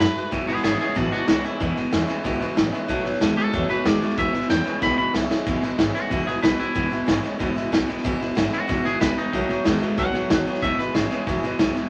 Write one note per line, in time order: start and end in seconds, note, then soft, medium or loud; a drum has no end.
0.00 0.13 F#2 medium
0.00 0.16 D#3 medium
0.00 0.16 A3 medium
0.00 0.16 B3 medium
0.00 0.14 F#4 medium
0.00 0.31 B4 loud
0.00 snare loud
0.00 hi-hat pedal medium
0.15 0.33 A3 soft
0.15 0.32 B3 medium
0.15 0.32 F#4 medium
0.15 muted upright bass stroke medium
0.15 snare soft
0.31 0.45 E1 medium
0.31 0.46 E2 medium
0.31 0.48 E2 medium
0.31 0.48 B2 medium
0.31 0.46 B2 loud
0.31 0.48 E3 medium
0.31 0.49 G#3 medium
0.31 0.47 B3 medium
0.31 0.46 E4 medium
0.31 kick loud
0.31 snare soft
0.47 0.61 E1 medium
0.47 0.62 E2 medium
0.47 0.63 B2 medium
0.47 0.62 E3 soft
0.47 0.63 G#3 soft
0.47 0.62 B3 medium
0.47 0.64 B3 soft
0.47 0.64 E4 medium
0.47 0.63 G#4 medium
0.47 snare soft
0.56 snare soft
0.63 0.78 G#1 medium
0.63 0.78 E2 medium
0.63 0.79 C#3 medium
0.63 0.80 E3 medium
0.63 0.80 G#3 medium
0.63 0.79 B3 medium
0.63 0.78 E4 medium
0.63 0.79 G#4 medium
0.63 snare medium
0.63 hi-hat pedal medium
0.79 0.95 E2 medium
0.79 0.95 C#3 medium
0.79 0.95 E3 soft
0.79 0.95 G#3 soft
0.79 0.96 B3 medium
0.79 0.96 E4 medium
0.79 0.96 G#4 medium
0.79 muted upright bass stroke medium
0.79 snare soft
0.95 1.10 A1 loud
0.95 1.12 E2 medium
0.95 1.11 E2 medium
0.95 1.12 B2 medium
0.95 1.11 B2 medium
0.95 1.12 E3 medium
0.95 1.12 G#3 medium
0.95 1.11 B3 medium
0.95 1.11 D4 medium
0.95 1.10 E4 medium
0.95 1.11 F#4 medium
0.95 kick loud
0.95 snare soft
1.11 1.27 E2 medium
1.11 1.27 B2 medium
1.11 1.26 E3 soft
1.11 1.27 G#3 soft
1.11 1.28 B3 medium
1.11 1.27 D4 medium
1.11 1.28 E4 medium
1.11 1.28 F#4 medium
1.11 muted upright bass stroke medium
1.11 snare soft
1.27 1.42 C#2 medium
1.27 1.43 E2 medium
1.27 1.43 C#3 loud
1.27 1.44 E3 soft
1.27 1.45 G#3 medium
1.27 1.44 B3 medium
1.27 1.43 D4 medium
1.27 1.42 E4 medium
1.27 1.45 F#4 medium
1.27 snare loud
1.27 hi-hat pedal medium
1.43 1.59 E2 medium
1.43 1.59 C#3 medium
1.43 1.60 E3 soft
1.43 1.60 G#3 soft
1.43 1.61 B3 soft
1.43 1.60 E4 medium
1.43 1.76 E4 medium
1.43 muted upright bass stroke medium
1.43 snare soft
1.60 1.76 E2 medium
1.60 1.74 E2 loud
1.60 1.75 E2 medium
1.60 1.77 B2 medium
1.60 1.75 B2 loud
1.60 1.77 E3 medium
1.60 1.77 G#3 medium
1.60 1.75 B3 medium
1.60 1.74 E4 medium
1.60 kick loud
1.60 snare soft
1.76 1.91 E2 medium
1.76 1.91 B2 medium
1.76 1.90 E3 soft
1.76 1.91 G#3 soft
1.76 1.93 B3 soft
1.76 1.92 E4 medium
1.76 muted upright bass stroke medium
1.76 snare soft
1.92 2.07 E2 medium
1.92 2.07 C#3 loud
1.92 2.08 E3 medium
1.92 2.08 G#3 medium
1.92 2.07 B3 medium
1.92 2.06 E4 medium
1.92 snare loud
1.92 hi-hat pedal medium
2.07 2.23 E2 medium
2.07 2.23 C#3 medium
2.07 2.24 E3 soft
2.07 2.24 G#3 medium
2.07 2.25 B3 medium
2.07 2.24 E4 medium
2.07 muted upright bass stroke medium
2.07 snare soft
2.24 2.38 C#2 loud
2.24 2.39 E2 medium
2.24 2.40 E2 medium
2.24 2.41 B2 medium
2.24 2.39 B2 loud
2.24 2.41 E3 medium
2.24 2.41 G#3 medium
2.24 2.40 B3 medium
2.24 2.39 E4 medium
2.24 kick loud
2.24 snare soft
2.40 2.55 E2 medium
2.40 2.55 B2 medium
2.40 2.54 E3 medium
2.40 2.56 G#3 medium
2.40 2.56 B3 medium
2.40 2.57 E4 medium
2.40 muted upright bass stroke medium
2.40 snare soft
2.55 2.71 A1 loud
2.55 2.71 E2 medium
2.55 2.71 C#3 loud
2.55 2.72 E3 medium
2.55 2.73 G#3 medium
2.55 2.72 B3 medium
2.55 2.71 E4 medium
2.55 snare loud
2.55 hi-hat pedal medium
2.72 2.87 E2 medium
2.72 2.87 C#3 medium
2.72 2.89 E3 medium
2.72 2.89 G#3 medium
2.72 2.89 B3 medium
2.72 2.89 E4 medium
2.72 muted upright bass stroke medium
2.72 snare soft
2.88 3.03 B1 medium
2.88 3.03 B2 medium
2.88 3.05 B2 medium
2.88 3.05 D#3 medium
2.88 3.03 F#3 medium
2.88 3.05 A3 medium
2.88 3.06 B3 medium
2.88 3.04 F#4 medium
2.88 kick loud
2.88 snare soft
3.04 3.19 B1 medium
3.04 3.19 B2 medium
3.04 3.19 F#3 medium
3.04 3.21 A3 medium
3.04 3.22 B3 medium
3.04 3.21 F#4 medium
3.04 snare soft
3.13 snare soft
3.20 3.35 D#2 medium
3.20 3.35 B2 medium
3.20 3.37 D#3 medium
3.20 3.36 G#3 medium
3.20 3.38 A3 medium
3.20 3.37 B3 medium
3.20 3.35 F#4 medium
3.20 snare loud
3.20 hi-hat pedal medium
3.36 3.52 B2 medium
3.36 3.52 G#3 medium
3.36 3.53 A3 soft
3.36 3.53 B3 soft
3.36 3.53 F#4 medium
3.36 3.68 A4 loud
3.36 muted upright bass stroke medium
3.36 snare soft
3.53 3.67 E2 medium
3.53 3.69 B2 medium
3.53 3.68 B2 medium
3.53 3.70 D#3 medium
3.53 3.68 F#3 loud
3.53 3.70 A3 medium
3.53 3.69 B3 medium
3.53 3.68 F#4 medium
3.53 kick loud
3.53 snare soft
3.69 3.84 B2 medium
3.69 3.84 F#3 medium
3.69 3.84 A3 soft
3.69 3.86 B3 medium
3.69 3.85 F#4 medium
3.69 3.86 B4 medium
3.69 snare soft
3.85 3.99 D#2 medium
3.85 3.99 B2 medium
3.85 4.01 D#3 medium
3.85 4.00 G#3 medium
3.85 4.02 A3 medium
3.85 4.02 B3 medium
3.85 4.00 F#4 medium
3.85 4.17 D5 medium
3.85 snare loud
3.85 hi-hat pedal medium
4.01 4.16 B2 medium
4.01 4.16 G#3 medium
4.01 4.19 A3 soft
4.01 4.19 B3 soft
4.01 4.18 F#4 medium
4.01 snare soft
4.10 snare soft
4.17 4.31 E1 medium
4.17 4.32 E2 medium
4.17 4.34 E2 medium
4.17 4.32 B2 loud
4.17 4.34 B2 medium
4.17 4.35 E3 medium
4.17 4.35 G#3 medium
4.17 4.34 B3 medium
4.17 4.33 E4 medium
4.17 4.49 E5 medium
4.17 kick loud
4.17 snare soft
4.33 4.48 E2 medium
4.33 4.48 B2 medium
4.33 4.48 E3 soft
4.33 4.49 G#3 soft
4.33 4.50 B3 medium
4.33 4.50 E4 medium
4.33 snare soft
4.42 snare soft
4.49 4.64 E2 medium
4.49 4.64 C#3 loud
4.49 4.66 E3 medium
4.49 4.66 G#3 medium
4.49 4.65 B3 medium
4.49 4.64 E4 medium
4.49 4.81 G5 medium
4.49 snare loud
4.49 hi-hat pedal medium
4.65 4.79 E2 medium
4.65 4.80 C#3 loud
4.65 4.82 E3 soft
4.65 4.82 G#3 soft
4.65 4.82 B3 medium
4.65 4.82 E4 medium
4.65 snare soft
4.80 4.96 C#2 loud
4.80 4.96 E2 medium
4.80 4.98 E2 medium
4.80 4.96 B2 loud
4.80 4.98 B2 medium
4.80 4.99 E3 medium
4.80 4.99 G#3 medium
4.80 4.98 B3 medium
4.80 4.97 E4 medium
4.80 4.97 B5 medium
4.80 kick loud
4.80 snare medium
4.97 5.12 E2 medium
4.97 5.12 B2 medium
4.97 5.12 E3 soft
4.97 5.14 G#3 medium
4.97 5.14 B3 medium
4.97 5.14 E4 medium
4.97 5.14 B5 loud
4.97 muted upright bass stroke medium
5.13 5.28 B1 medium
5.13 5.28 E2 medium
5.13 5.29 C#3 medium
5.13 5.30 E3 soft
5.13 5.31 G#3 medium
5.13 5.30 B3 medium
5.13 5.29 E4 medium
5.13 snare medium
5.13 hi-hat pedal medium
5.29 5.44 E2 medium
5.29 5.45 C#3 medium
5.29 5.46 E3 soft
5.29 5.46 G#3 medium
5.29 5.47 B3 medium
5.29 5.46 E4 medium
5.29 snare medium
5.46 5.58 E1 loud
5.46 5.61 E2 medium
5.46 5.62 E2 medium
5.46 5.61 B2 medium
5.46 5.63 B2 medium
5.46 5.63 E3 medium
5.46 5.63 G#3 loud
5.46 5.63 B3 loud
5.46 5.61 E4 medium
5.46 kick loud
5.46 snare soft
5.62 5.77 E2 medium
5.62 5.77 B2 medium
5.62 5.77 E3 soft
5.62 5.78 G#3 medium
5.62 5.79 B3 medium
5.62 5.79 E4 medium
5.62 snare soft
5.78 5.90 G#1 medium
5.78 5.93 E2 medium
5.78 5.93 C#3 medium
5.78 5.95 E3 medium
5.78 5.95 G#3 medium
5.78 5.94 B3 medium
5.78 5.93 E4 medium
5.78 kick medium
5.78 snare loud
5.78 hi-hat pedal medium
5.94 6.08 E2 medium
5.94 6.09 C#3 medium
5.94 6.10 E3 soft
5.94 6.11 G#3 soft
5.94 6.11 B3 medium
5.94 6.11 E4 medium
5.94 6.26 F#4 medium
5.94 snare soft
6.10 6.23 E1 medium
6.10 6.25 E2 medium
6.10 6.27 E2 medium
6.10 6.25 B2 medium
6.10 6.27 B2 medium
6.10 6.27 E3 medium
6.10 6.27 G#3 medium
6.10 6.26 B3 medium
6.10 6.25 E4 medium
6.10 kick loud
6.10 snare soft
6.26 6.41 E2 medium
6.26 6.41 B2 loud
6.26 6.40 E3 soft
6.26 6.42 G#3 medium
6.26 6.42 B3 medium
6.26 6.43 E4 medium
6.26 6.42 G#4 medium
6.26 muted upright bass stroke medium
6.26 snare soft
6.41 6.55 B1 loud
6.41 6.57 E2 medium
6.41 6.58 B2 medium
6.41 6.58 E3 medium
6.41 6.59 G#3 medium
6.41 6.57 B3 medium
6.41 6.56 E4 medium
6.41 6.58 B4 medium
6.41 kick medium
6.41 snare loud
6.41 hi-hat pedal medium
6.58 6.73 E2 medium
6.58 6.74 B2 medium
6.58 6.74 E3 soft
6.58 6.74 G#3 soft
6.58 6.75 B3 medium
6.58 6.75 E4 soft
6.58 7.22 E4 loud
6.58 snare soft
6.74 6.87 E1 loud
6.74 6.91 E2 medium
6.74 6.90 E2 medium
6.74 6.91 B2 medium
6.74 6.90 B2 medium
6.74 6.91 E3 medium
6.74 6.91 G#3 medium
6.74 6.90 B3 medium
6.74 6.89 E4 medium
6.74 kick loud
6.74 snare soft
6.90 7.06 E2 medium
6.90 7.06 B2 medium
6.90 7.05 E3 soft
6.90 7.07 G#3 soft
6.90 7.07 B3 medium
6.90 7.07 E4 medium
6.90 snare soft
7.06 7.20 G#1 loud
7.06 7.22 E2 medium
7.06 7.22 C#3 loud
7.06 7.23 E3 medium
7.06 7.23 G#3 medium
7.06 7.22 B3 medium
7.06 7.21 E4 medium
7.06 kick medium
7.06 snare loud
7.06 hi-hat pedal medium
7.22 7.38 E2 medium
7.22 7.38 C#3 medium
7.22 7.39 E3 medium
7.22 7.39 G#3 medium
7.22 7.39 B3 medium
7.22 7.39 E4 medium
7.22 muted upright bass stroke medium
7.22 snare soft
7.39 7.52 E1 loud
7.39 7.56 E2 medium
7.39 7.54 E2 medium
7.39 7.56 B2 medium
7.39 7.54 B2 loud
7.39 7.56 E3 medium
7.39 7.56 G#3 medium
7.39 7.56 B3 medium
7.39 7.54 E4 loud
7.39 kick loud
7.39 snare soft
7.56 7.71 E2 medium
7.56 7.71 B2 medium
7.56 7.71 E3 medium
7.56 7.72 G#3 medium
7.56 7.73 B3 medium
7.56 7.72 E4 medium
7.56 muted upright bass stroke medium
7.56 snare soft
7.72 7.84 B1 medium
7.72 7.87 E2 medium
7.72 7.87 B2 loud
7.72 7.88 E3 medium
7.72 7.89 G#3 medium
7.72 7.88 B3 medium
7.72 7.87 E4 medium
7.72 kick medium
7.72 snare loud
7.72 hi-hat pedal medium
7.88 8.03 E2 medium
7.88 8.03 B2 medium
7.88 8.04 E3 soft
7.88 8.04 G#3 medium
7.88 8.05 B3 medium
7.88 8.04 E4 medium
7.88 snare soft
7.97 snare soft
8.04 8.16 E1 medium
8.04 8.19 E2 medium
8.04 8.20 E2 medium
8.04 8.21 B2 medium
8.04 8.19 B2 medium
8.04 8.21 E3 loud
8.04 8.21 G#3 medium
8.04 8.20 B3 loud
8.04 8.19 E4 loud
8.04 kick loud
8.04 snare soft
8.20 8.35 E2 medium
8.20 8.35 B2 medium
8.20 8.34 E3 soft
8.20 8.36 G#3 medium
8.20 8.36 B3 medium
8.20 8.36 E4 medium
8.20 snare soft
8.35 8.48 G#1 medium
8.35 8.51 E2 medium
8.35 8.51 C#3 loud
8.35 8.52 E3 medium
8.35 8.53 G#3 medium
8.35 8.52 B3 medium
8.35 8.51 E4 medium
8.35 kick medium
8.35 snare medium
8.35 hi-hat pedal medium
8.52 8.67 E2 medium
8.52 8.68 C#3 medium
8.52 8.67 E3 soft
8.52 8.68 G#3 medium
8.52 8.69 B3 medium
8.52 8.68 E4 medium
8.52 8.85 F#4 medium
8.52 muted upright bass stroke medium
8.52 snare soft
8.68 8.81 E1 medium
8.68 8.84 E2 medium
8.68 8.83 E2 medium
8.68 8.85 B2 medium
8.68 8.83 B2 medium
8.68 8.85 E3 medium
8.68 8.85 G#3 medium
8.68 8.84 B3 medium
8.68 8.83 E4 medium
8.68 kick loud
8.68 snare soft
8.84 8.99 E2 medium
8.84 9.00 B2 medium
8.84 8.99 E3 soft
8.84 9.00 G#3 medium
8.84 9.01 B3 medium
8.84 9.01 E4 medium
8.84 9.00 G#4 medium
8.84 snare soft
9.00 9.13 C#2 medium
9.00 9.15 E2 medium
9.00 9.15 B2 loud
9.00 9.17 E3 medium
9.00 9.18 G#3 medium
9.00 9.17 B3 medium
9.00 9.15 E4 medium
9.00 9.17 B4 medium
9.00 kick medium
9.00 snare loud
9.00 hi-hat pedal medium
9.16 9.31 E2 medium
9.16 9.31 B2 medium
9.16 9.34 E3 soft
9.16 9.34 G#3 soft
9.16 9.34 B3 soft
9.16 9.80 D#4 medium
9.16 9.33 E4 medium
9.16 muted upright bass stroke medium
9.16 snare soft
9.33 9.45 B1 medium
9.33 9.48 B2 medium
9.33 9.49 B2 medium
9.33 9.50 D#3 medium
9.33 9.48 F#3 medium
9.33 9.50 A3 medium
9.33 9.49 B3 medium
9.33 9.47 F#4 medium
9.33 kick loud
9.33 snare soft
9.49 9.64 B2 medium
9.49 9.64 F#3 medium
9.49 9.65 A3 soft
9.49 9.66 B3 medium
9.49 9.65 F#4 medium
9.49 muted upright bass stroke medium
9.49 snare soft
9.65 9.77 D#2 loud
9.65 9.80 B2 medium
9.65 9.81 D#3 medium
9.65 9.80 G#3 loud
9.65 9.82 A3 medium
9.65 9.81 B3 medium
9.65 9.80 F#4 medium
9.65 kick medium
9.65 snare loud
9.65 hi-hat pedal medium
9.81 9.96 B2 medium
9.81 9.96 G#3 medium
9.81 9.97 A3 medium
9.81 9.98 B3 medium
9.81 9.97 F#4 medium
9.81 muted upright bass stroke medium
9.81 snare soft
9.97 10.10 B1 loud
9.97 10.14 B2 medium
9.97 10.12 B2 medium
9.97 10.14 D#3 medium
9.97 10.12 F#3 loud
9.97 10.14 A3 medium
9.97 10.14 B3 medium
9.97 10.12 F#4 medium
9.97 10.61 F#5 medium
9.97 kick loud
9.97 snare soft
10.13 10.28 B2 medium
10.13 10.29 F#3 medium
10.13 10.30 A3 medium
10.13 10.31 B3 medium
10.13 10.30 F#4 medium
10.13 muted upright bass stroke medium
10.13 snare soft
10.29 10.42 D#2 medium
10.29 10.44 B2 medium
10.29 10.46 D#3 medium
10.29 10.45 F#3 loud
10.29 10.47 A3 medium
10.29 10.46 B3 medium
10.29 10.44 F#4 medium
10.29 kick loud
10.29 snare loud
10.29 hi-hat pedal medium
10.45 10.61 B2 medium
10.45 10.61 F#3 medium
10.45 10.64 A3 soft
10.45 10.63 B3 medium
10.45 10.62 F#4 medium
10.45 muted upright bass stroke medium
10.45 snare soft
10.54 snare soft
10.62 10.74 E1 medium
10.62 10.77 E2 medium
10.62 10.79 E2 medium
10.62 10.77 B2 loud
10.62 10.79 B2 medium
10.62 10.79 E3 medium
10.62 10.79 G#3 medium
10.62 10.79 B3 medium
10.62 10.78 E4 medium
10.62 10.78 E5 medium
10.62 kick loud
10.62 snare soft
10.78 10.93 E2 medium
10.78 10.93 B2 medium
10.78 10.95 G#3 medium
10.78 10.96 B3 medium
10.78 10.95 E4 medium
10.78 10.95 B4 medium
10.78 muted upright bass stroke medium
10.78 snare soft
10.82 10.94 E3 soft
10.94 11.06 G#1 medium
10.94 11.09 E2 medium
10.94 11.09 C#3 medium
10.94 11.11 E3 medium
10.94 11.12 G#3 medium
10.94 11.11 B3 medium
10.94 11.09 E4 medium
10.94 11.57 G#4 loud
10.94 kick medium
10.94 snare medium
10.94 hi-hat pedal medium
11.10 11.25 E2 medium
11.10 11.25 C#3 medium
11.10 11.27 E3 soft
11.10 11.28 G#3 medium
11.10 11.27 B3 soft
11.10 11.27 E4 medium
11.10 muted upright bass stroke medium
11.10 snare soft
11.26 11.39 E1 loud
11.26 11.41 E2 medium
11.26 11.43 E2 medium
11.26 11.42 B2 medium
11.26 11.44 B2 medium
11.26 11.44 E3 medium
11.26 11.44 G#3 medium
11.26 11.43 B3 medium
11.26 11.42 E4 medium
11.26 kick loud
11.26 snare soft
11.43 11.58 E2 medium
11.43 11.58 B2 medium
11.43 11.58 E3 medium
11.43 11.59 G#3 medium
11.43 11.60 B3 medium
11.43 11.59 E4 medium
11.43 snare soft
11.59 11.71 B1 medium
11.59 11.74 E2 medium
11.59 11.74 B2 medium
11.59 11.75 E3 medium
11.59 11.76 G#3 medium
11.59 11.75 B3 medium
11.59 11.73 E4 medium
11.59 kick medium
11.59 snare loud
11.59 hi-hat pedal medium
11.74 11.89 E2 medium
11.74 11.89 B2 medium
11.74 11.89 E3 soft
11.74 11.89 G#3 medium
11.74 11.89 B3 medium
11.74 11.89 E4 medium
11.74 muted upright bass stroke medium
11.74 snare soft